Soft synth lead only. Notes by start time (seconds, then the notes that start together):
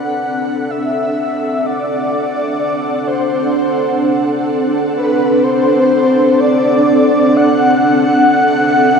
Already playing: F#5
0.71 E5
1.66 D5
3.07 C5
4.97 B4
5.43 C5
6.40 D5
7.37 F#5